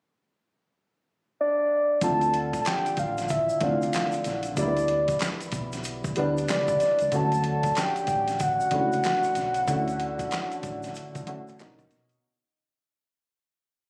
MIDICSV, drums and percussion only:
0, 0, Header, 1, 2, 480
1, 0, Start_track
1, 0, Key_signature, 2, "major"
1, 0, Tempo, 638298
1, 1518, Time_signature, 4, 2, 24, 8
1, 10446, End_track
2, 0, Start_track
2, 0, Title_t, "Drums"
2, 1515, Note_on_c, 9, 42, 77
2, 1516, Note_on_c, 9, 36, 99
2, 1517, Note_on_c, 9, 82, 61
2, 1590, Note_off_c, 9, 42, 0
2, 1591, Note_off_c, 9, 36, 0
2, 1592, Note_off_c, 9, 82, 0
2, 1664, Note_on_c, 9, 42, 31
2, 1668, Note_on_c, 9, 82, 42
2, 1740, Note_off_c, 9, 42, 0
2, 1744, Note_off_c, 9, 82, 0
2, 1757, Note_on_c, 9, 42, 62
2, 1832, Note_off_c, 9, 42, 0
2, 1905, Note_on_c, 9, 36, 79
2, 1906, Note_on_c, 9, 42, 52
2, 1908, Note_on_c, 9, 82, 48
2, 1980, Note_off_c, 9, 36, 0
2, 1982, Note_off_c, 9, 42, 0
2, 1984, Note_off_c, 9, 82, 0
2, 1993, Note_on_c, 9, 42, 63
2, 2000, Note_on_c, 9, 26, 67
2, 2000, Note_on_c, 9, 82, 62
2, 2007, Note_on_c, 9, 39, 88
2, 2011, Note_on_c, 9, 38, 109
2, 2068, Note_off_c, 9, 42, 0
2, 2076, Note_off_c, 9, 26, 0
2, 2076, Note_off_c, 9, 82, 0
2, 2082, Note_off_c, 9, 39, 0
2, 2086, Note_off_c, 9, 38, 0
2, 2151, Note_on_c, 9, 42, 33
2, 2152, Note_on_c, 9, 82, 40
2, 2226, Note_off_c, 9, 42, 0
2, 2228, Note_off_c, 9, 82, 0
2, 2233, Note_on_c, 9, 42, 63
2, 2237, Note_on_c, 9, 36, 87
2, 2245, Note_on_c, 9, 82, 44
2, 2308, Note_off_c, 9, 42, 0
2, 2312, Note_off_c, 9, 36, 0
2, 2320, Note_off_c, 9, 82, 0
2, 2389, Note_on_c, 9, 82, 45
2, 2393, Note_on_c, 9, 42, 44
2, 2407, Note_on_c, 9, 38, 34
2, 2464, Note_off_c, 9, 82, 0
2, 2468, Note_off_c, 9, 42, 0
2, 2471, Note_on_c, 9, 82, 65
2, 2482, Note_off_c, 9, 38, 0
2, 2483, Note_on_c, 9, 36, 89
2, 2484, Note_on_c, 9, 42, 66
2, 2547, Note_off_c, 9, 82, 0
2, 2559, Note_off_c, 9, 36, 0
2, 2560, Note_off_c, 9, 42, 0
2, 2626, Note_on_c, 9, 82, 46
2, 2702, Note_off_c, 9, 82, 0
2, 2711, Note_on_c, 9, 42, 75
2, 2716, Note_on_c, 9, 36, 95
2, 2786, Note_off_c, 9, 42, 0
2, 2791, Note_off_c, 9, 36, 0
2, 2871, Note_on_c, 9, 82, 43
2, 2881, Note_on_c, 9, 42, 33
2, 2946, Note_off_c, 9, 82, 0
2, 2956, Note_off_c, 9, 42, 0
2, 2957, Note_on_c, 9, 26, 57
2, 2957, Note_on_c, 9, 82, 59
2, 2963, Note_on_c, 9, 42, 69
2, 2972, Note_on_c, 9, 39, 80
2, 2976, Note_on_c, 9, 38, 96
2, 3032, Note_off_c, 9, 26, 0
2, 3032, Note_off_c, 9, 82, 0
2, 3038, Note_off_c, 9, 42, 0
2, 3047, Note_off_c, 9, 39, 0
2, 3052, Note_off_c, 9, 38, 0
2, 3096, Note_on_c, 9, 82, 44
2, 3113, Note_on_c, 9, 42, 33
2, 3171, Note_off_c, 9, 82, 0
2, 3188, Note_off_c, 9, 42, 0
2, 3192, Note_on_c, 9, 42, 59
2, 3194, Note_on_c, 9, 82, 46
2, 3216, Note_on_c, 9, 38, 33
2, 3267, Note_off_c, 9, 42, 0
2, 3269, Note_off_c, 9, 82, 0
2, 3291, Note_off_c, 9, 38, 0
2, 3330, Note_on_c, 9, 42, 47
2, 3342, Note_on_c, 9, 82, 40
2, 3405, Note_off_c, 9, 42, 0
2, 3417, Note_off_c, 9, 82, 0
2, 3435, Note_on_c, 9, 82, 63
2, 3436, Note_on_c, 9, 36, 99
2, 3436, Note_on_c, 9, 42, 85
2, 3510, Note_off_c, 9, 82, 0
2, 3511, Note_off_c, 9, 36, 0
2, 3511, Note_off_c, 9, 42, 0
2, 3584, Note_on_c, 9, 42, 34
2, 3596, Note_on_c, 9, 82, 44
2, 3659, Note_off_c, 9, 42, 0
2, 3671, Note_off_c, 9, 82, 0
2, 3671, Note_on_c, 9, 42, 63
2, 3746, Note_off_c, 9, 42, 0
2, 3820, Note_on_c, 9, 42, 57
2, 3823, Note_on_c, 9, 36, 87
2, 3831, Note_on_c, 9, 82, 48
2, 3895, Note_off_c, 9, 42, 0
2, 3898, Note_off_c, 9, 36, 0
2, 3905, Note_on_c, 9, 42, 65
2, 3906, Note_off_c, 9, 82, 0
2, 3920, Note_on_c, 9, 39, 87
2, 3924, Note_on_c, 9, 38, 108
2, 3925, Note_on_c, 9, 26, 65
2, 3925, Note_on_c, 9, 82, 66
2, 3981, Note_off_c, 9, 42, 0
2, 3995, Note_off_c, 9, 39, 0
2, 3999, Note_off_c, 9, 38, 0
2, 4000, Note_off_c, 9, 26, 0
2, 4000, Note_off_c, 9, 82, 0
2, 4064, Note_on_c, 9, 42, 34
2, 4072, Note_on_c, 9, 82, 43
2, 4140, Note_off_c, 9, 42, 0
2, 4147, Note_off_c, 9, 82, 0
2, 4148, Note_on_c, 9, 42, 66
2, 4155, Note_on_c, 9, 36, 87
2, 4159, Note_on_c, 9, 82, 47
2, 4224, Note_off_c, 9, 42, 0
2, 4230, Note_off_c, 9, 36, 0
2, 4234, Note_off_c, 9, 82, 0
2, 4305, Note_on_c, 9, 82, 43
2, 4309, Note_on_c, 9, 42, 43
2, 4323, Note_on_c, 9, 38, 33
2, 4380, Note_off_c, 9, 82, 0
2, 4384, Note_off_c, 9, 42, 0
2, 4391, Note_on_c, 9, 82, 63
2, 4398, Note_off_c, 9, 38, 0
2, 4401, Note_on_c, 9, 42, 66
2, 4466, Note_off_c, 9, 82, 0
2, 4476, Note_off_c, 9, 42, 0
2, 4544, Note_on_c, 9, 36, 88
2, 4546, Note_on_c, 9, 82, 46
2, 4620, Note_off_c, 9, 36, 0
2, 4621, Note_off_c, 9, 82, 0
2, 4630, Note_on_c, 9, 42, 73
2, 4706, Note_off_c, 9, 42, 0
2, 4793, Note_on_c, 9, 82, 41
2, 4800, Note_on_c, 9, 42, 34
2, 4868, Note_off_c, 9, 82, 0
2, 4875, Note_off_c, 9, 42, 0
2, 4876, Note_on_c, 9, 26, 57
2, 4876, Note_on_c, 9, 82, 60
2, 4877, Note_on_c, 9, 42, 72
2, 4887, Note_on_c, 9, 39, 73
2, 4891, Note_on_c, 9, 38, 100
2, 4952, Note_off_c, 9, 26, 0
2, 4952, Note_off_c, 9, 82, 0
2, 4953, Note_off_c, 9, 42, 0
2, 4962, Note_off_c, 9, 39, 0
2, 4966, Note_off_c, 9, 38, 0
2, 5023, Note_on_c, 9, 82, 45
2, 5024, Note_on_c, 9, 36, 89
2, 5027, Note_on_c, 9, 42, 31
2, 5098, Note_off_c, 9, 82, 0
2, 5100, Note_off_c, 9, 36, 0
2, 5102, Note_off_c, 9, 42, 0
2, 5114, Note_on_c, 9, 42, 59
2, 5118, Note_on_c, 9, 82, 44
2, 5138, Note_on_c, 9, 38, 34
2, 5189, Note_off_c, 9, 42, 0
2, 5193, Note_off_c, 9, 82, 0
2, 5213, Note_off_c, 9, 38, 0
2, 5254, Note_on_c, 9, 42, 45
2, 5267, Note_on_c, 9, 82, 41
2, 5329, Note_off_c, 9, 42, 0
2, 5342, Note_off_c, 9, 82, 0
2, 5353, Note_on_c, 9, 42, 80
2, 5355, Note_on_c, 9, 36, 96
2, 5357, Note_on_c, 9, 82, 60
2, 5428, Note_off_c, 9, 42, 0
2, 5430, Note_off_c, 9, 36, 0
2, 5432, Note_off_c, 9, 82, 0
2, 5503, Note_on_c, 9, 42, 34
2, 5517, Note_on_c, 9, 82, 45
2, 5578, Note_off_c, 9, 42, 0
2, 5592, Note_off_c, 9, 82, 0
2, 5592, Note_on_c, 9, 42, 63
2, 5668, Note_off_c, 9, 42, 0
2, 5740, Note_on_c, 9, 42, 56
2, 5742, Note_on_c, 9, 36, 86
2, 5755, Note_on_c, 9, 82, 48
2, 5815, Note_off_c, 9, 42, 0
2, 5818, Note_off_c, 9, 36, 0
2, 5830, Note_off_c, 9, 82, 0
2, 5831, Note_on_c, 9, 42, 65
2, 5844, Note_on_c, 9, 26, 63
2, 5844, Note_on_c, 9, 82, 65
2, 5845, Note_on_c, 9, 39, 90
2, 5849, Note_on_c, 9, 38, 110
2, 5906, Note_off_c, 9, 42, 0
2, 5920, Note_off_c, 9, 26, 0
2, 5920, Note_off_c, 9, 39, 0
2, 5920, Note_off_c, 9, 82, 0
2, 5924, Note_off_c, 9, 38, 0
2, 5985, Note_on_c, 9, 42, 35
2, 5990, Note_on_c, 9, 82, 42
2, 6061, Note_off_c, 9, 42, 0
2, 6066, Note_off_c, 9, 82, 0
2, 6069, Note_on_c, 9, 42, 68
2, 6074, Note_on_c, 9, 36, 87
2, 6077, Note_on_c, 9, 82, 43
2, 6144, Note_off_c, 9, 42, 0
2, 6149, Note_off_c, 9, 36, 0
2, 6152, Note_off_c, 9, 82, 0
2, 6224, Note_on_c, 9, 42, 46
2, 6228, Note_on_c, 9, 82, 45
2, 6238, Note_on_c, 9, 38, 33
2, 6299, Note_off_c, 9, 42, 0
2, 6303, Note_off_c, 9, 82, 0
2, 6312, Note_on_c, 9, 82, 66
2, 6313, Note_off_c, 9, 38, 0
2, 6315, Note_on_c, 9, 42, 67
2, 6320, Note_on_c, 9, 36, 95
2, 6387, Note_off_c, 9, 82, 0
2, 6391, Note_off_c, 9, 42, 0
2, 6395, Note_off_c, 9, 36, 0
2, 6470, Note_on_c, 9, 82, 46
2, 6545, Note_off_c, 9, 82, 0
2, 6549, Note_on_c, 9, 42, 75
2, 6554, Note_on_c, 9, 36, 88
2, 6624, Note_off_c, 9, 42, 0
2, 6629, Note_off_c, 9, 36, 0
2, 6710, Note_on_c, 9, 82, 41
2, 6719, Note_on_c, 9, 42, 33
2, 6785, Note_off_c, 9, 82, 0
2, 6794, Note_off_c, 9, 42, 0
2, 6796, Note_on_c, 9, 26, 60
2, 6796, Note_on_c, 9, 82, 60
2, 6801, Note_on_c, 9, 42, 67
2, 6811, Note_on_c, 9, 39, 76
2, 6815, Note_on_c, 9, 38, 100
2, 6871, Note_off_c, 9, 26, 0
2, 6871, Note_off_c, 9, 82, 0
2, 6876, Note_off_c, 9, 42, 0
2, 6886, Note_off_c, 9, 39, 0
2, 6890, Note_off_c, 9, 38, 0
2, 6943, Note_on_c, 9, 82, 43
2, 6953, Note_on_c, 9, 42, 31
2, 7018, Note_off_c, 9, 82, 0
2, 7028, Note_off_c, 9, 42, 0
2, 7033, Note_on_c, 9, 42, 61
2, 7038, Note_on_c, 9, 82, 44
2, 7057, Note_on_c, 9, 38, 34
2, 7108, Note_off_c, 9, 42, 0
2, 7113, Note_off_c, 9, 82, 0
2, 7133, Note_off_c, 9, 38, 0
2, 7177, Note_on_c, 9, 42, 46
2, 7187, Note_on_c, 9, 82, 40
2, 7252, Note_off_c, 9, 42, 0
2, 7262, Note_off_c, 9, 82, 0
2, 7277, Note_on_c, 9, 36, 102
2, 7277, Note_on_c, 9, 82, 66
2, 7281, Note_on_c, 9, 42, 85
2, 7352, Note_off_c, 9, 36, 0
2, 7352, Note_off_c, 9, 82, 0
2, 7357, Note_off_c, 9, 42, 0
2, 7427, Note_on_c, 9, 42, 32
2, 7435, Note_on_c, 9, 82, 44
2, 7502, Note_off_c, 9, 42, 0
2, 7510, Note_off_c, 9, 82, 0
2, 7517, Note_on_c, 9, 42, 64
2, 7592, Note_off_c, 9, 42, 0
2, 7665, Note_on_c, 9, 36, 85
2, 7666, Note_on_c, 9, 42, 58
2, 7666, Note_on_c, 9, 82, 50
2, 7740, Note_off_c, 9, 36, 0
2, 7741, Note_off_c, 9, 42, 0
2, 7741, Note_off_c, 9, 82, 0
2, 7754, Note_on_c, 9, 42, 63
2, 7761, Note_on_c, 9, 26, 62
2, 7761, Note_on_c, 9, 82, 65
2, 7768, Note_on_c, 9, 39, 90
2, 7772, Note_on_c, 9, 38, 115
2, 7829, Note_off_c, 9, 42, 0
2, 7836, Note_off_c, 9, 26, 0
2, 7836, Note_off_c, 9, 82, 0
2, 7843, Note_off_c, 9, 39, 0
2, 7847, Note_off_c, 9, 38, 0
2, 7908, Note_on_c, 9, 42, 35
2, 7910, Note_on_c, 9, 82, 41
2, 7983, Note_off_c, 9, 42, 0
2, 7985, Note_off_c, 9, 82, 0
2, 7994, Note_on_c, 9, 42, 66
2, 7996, Note_on_c, 9, 36, 89
2, 8002, Note_on_c, 9, 82, 47
2, 8069, Note_off_c, 9, 42, 0
2, 8072, Note_off_c, 9, 36, 0
2, 8077, Note_off_c, 9, 82, 0
2, 8144, Note_on_c, 9, 82, 44
2, 8152, Note_on_c, 9, 42, 46
2, 8166, Note_on_c, 9, 38, 34
2, 8219, Note_off_c, 9, 82, 0
2, 8227, Note_off_c, 9, 42, 0
2, 8232, Note_on_c, 9, 82, 61
2, 8241, Note_off_c, 9, 38, 0
2, 8247, Note_on_c, 9, 42, 65
2, 8308, Note_off_c, 9, 82, 0
2, 8322, Note_off_c, 9, 42, 0
2, 8385, Note_on_c, 9, 42, 34
2, 8387, Note_on_c, 9, 36, 89
2, 8389, Note_on_c, 9, 82, 47
2, 8460, Note_off_c, 9, 42, 0
2, 8462, Note_off_c, 9, 36, 0
2, 8464, Note_off_c, 9, 82, 0
2, 8475, Note_on_c, 9, 42, 78
2, 8550, Note_off_c, 9, 42, 0
2, 8631, Note_on_c, 9, 82, 43
2, 8644, Note_on_c, 9, 42, 35
2, 8706, Note_off_c, 9, 82, 0
2, 8719, Note_off_c, 9, 42, 0
2, 8719, Note_on_c, 9, 26, 59
2, 8719, Note_on_c, 9, 82, 62
2, 8720, Note_on_c, 9, 42, 68
2, 8730, Note_on_c, 9, 39, 79
2, 8734, Note_on_c, 9, 38, 98
2, 8794, Note_off_c, 9, 26, 0
2, 8794, Note_off_c, 9, 82, 0
2, 8796, Note_off_c, 9, 42, 0
2, 8805, Note_off_c, 9, 39, 0
2, 8809, Note_off_c, 9, 38, 0
2, 8864, Note_on_c, 9, 36, 93
2, 8864, Note_on_c, 9, 82, 44
2, 8868, Note_on_c, 9, 42, 33
2, 8939, Note_off_c, 9, 82, 0
2, 8940, Note_off_c, 9, 36, 0
2, 8943, Note_off_c, 9, 42, 0
2, 8953, Note_on_c, 9, 82, 45
2, 8954, Note_on_c, 9, 42, 63
2, 8978, Note_on_c, 9, 38, 34
2, 9029, Note_off_c, 9, 42, 0
2, 9029, Note_off_c, 9, 82, 0
2, 9054, Note_off_c, 9, 38, 0
2, 9094, Note_on_c, 9, 42, 46
2, 9105, Note_on_c, 9, 82, 42
2, 9169, Note_off_c, 9, 42, 0
2, 9181, Note_off_c, 9, 82, 0
2, 10446, End_track
0, 0, End_of_file